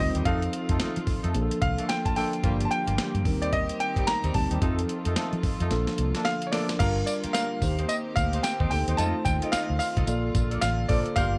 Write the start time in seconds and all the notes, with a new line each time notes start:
Already playing: D#3 A#3 C4 G4 A#4
0.00 D2 G3 C4 D#4 F4 D#5
0.15 D#2 G3 C4 D#4 G4, closed hi-hat
0.25 F2 D#3 F3 A3 C4 D#4 F4 A4 F5, kick, closed hi-hat
0.42 closed hi-hat
0.53 closed hi-hat
0.69 F2 A3 D#4 F4 A4, kick, closed hi-hat
0.80 A3 D#4 F4 A4, muted fingered electric bass stroke, snare, closed hi-hat
0.96 F3, closed hi-hat
1.07 kick, open hi-hat
1.24 F2 A3 D#4 F4 A4, closed hi-hat
1.34 A#1 D3 F3 A#3 D4 F4 G#4, closed hi-hat
1.42 A4
1.51 muted fingered electric bass stroke, closed hi-hat
1.62 C2 F5, kick, closed hi-hat
1.78 A3 A#3 D4 A4, closed hi-hat
1.89 G5, snare, closed hi-hat
2.05 A5, kick, closed hi-hat
2.16 F3 A3 A#3 D4 A4 G5, open hi-hat
2.33 closed hi-hat
2.43 G1 D3 F3 G3 A#3 D4 F4 G4, kick, closed hi-hat
2.61 closed hi-hat
2.65 A5
2.71 G5, closed hi-hat
2.87 G1 G3 A#3 F4 G4, closed hi-hat
2.98 G3 A#3 F4 G4, snare, closed hi-hat
3.14 G2, closed hi-hat
3.25 D#2 D#3 G3 C4 D#4 G4 A#4, kick, open hi-hat
3.41 G3 C4 D#4 G4 D5, closed hi-hat
3.53 D#5, kick, closed hi-hat
3.69 closed hi-hat
3.80 G5, closed hi-hat
3.96 G3 C4 D#4 G4, kick, closed hi-hat
4.07 A#5, snare, closed hi-hat
4.23 D#2 G3 C4 D#4 G4, closed hi-hat
4.34 D2 G3 C4 D#4 G4 A5, kick, open hi-hat
4.50 D#2 G3 C4 D#4 G4, closed hi-hat
4.61 F2 D#3 F3 A3 C4 D#4 F4 A4, kick, closed hi-hat
4.79 closed hi-hat
4.89 closed hi-hat
5.05 F2 A3 D#4 F4 A4, closed hi-hat
5.16 A3 D#4 F4 A4, muted fingered electric bass stroke, snare, closed hi-hat
5.33 F3, closed hi-hat
5.43 kick, open hi-hat
5.60 F2 A3 D#4 F4 A4, closed hi-hat
5.71 A#1 D3 F3 A#3 D4 A4, snare, closed hi-hat
5.87 snare, closed hi-hat
5.98 C2, closed hi-hat
6.15 A3 A#3 D4 A4, snare, closed hi-hat
6.25 F5, snare, closed hi-hat
6.42 closed hi-hat
6.47 C#5
6.52 F3 A3 A#3 D4 A4 A#4 D5, snare, open hi-hat
6.69 snare, closed hi-hat
6.79 G1 D3 G3 A#3 D4 F4 G4 A#4 F5, kick, closed hi-hat, crash, tambourine
7.06 D5, closed hi-hat, tambourine
7.24 A#3 F4 G4 A#4, muted fingered electric bass stroke, closed hi-hat
7.33 A#3 F4 G4 A#4 F5, snare, closed hi-hat, tambourine
7.62 D#2 D#3 A#3 C4 D#4 G4 C5, kick, open hi-hat, tambourine
7.78 C4 D#4 G4 C5, closed hi-hat
7.89 D#5, closed hi-hat, tambourine
8.16 D2 F5, kick, closed hi-hat, tambourine
8.33 C4 D#4 G4 C5, closed hi-hat
8.43 G5, snare, closed hi-hat, tambourine
8.60 D#2 C4 D#4 G4 C5, kick
8.71 D2 A#3 D#4 G4 A4 G5, open hi-hat
8.87 D#2 C4 D#4 G4 C5, closed hi-hat
8.97 F2 D#3 G#3 A3 D#4 F4 A4 C5 D#5 A5, closed hi-hat, tambourine
9.05 A3
9.25 D#2 G5, kick, closed hi-hat, tambourine
9.42 D#4 F4 A4 D#5, closed hi-hat
9.52 D#4 F4 A4 D#5 F5, muted fingered electric bass stroke, snare, closed hi-hat, tambourine
9.70 D2
9.79 F5, open hi-hat, tambourine
9.96 C2 D#4 F4 A4 D#5, kick, closed hi-hat
10.07 A#1 D3 A#3 F4 A4 D5, closed hi-hat, tambourine
10.35 A#1, kick, closed hi-hat, tambourine
10.51 D4 A4 A#4 D5, closed hi-hat
10.61 A1 F5, snare, closed hi-hat, tambourine
10.88 A#1 A#3 D4 F4 A4 A#4 C5 D5, kick, open hi-hat
11.06 closed hi-hat
11.16 G1 G3 A#3 F4 G4 A#4 D5 F5, kick, closed hi-hat, tambourine